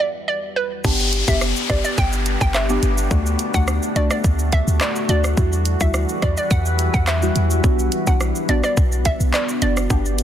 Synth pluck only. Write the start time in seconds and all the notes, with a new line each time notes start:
0.00 D5
0.28 D5
0.56 B4
1.28 E5
1.70 D5
1.84 D5
1.98 G5
2.41 G5
2.55 E5
3.54 F#5
3.96 D5
4.11 D5
4.53 E5
4.81 D5
5.09 D5
5.81 E5
6.22 D5
6.38 D5
6.51 F#5
6.94 F#5
7.07 E5
8.07 F#5
8.49 D5
8.64 D5
9.06 E5
9.34 D5
9.62 D5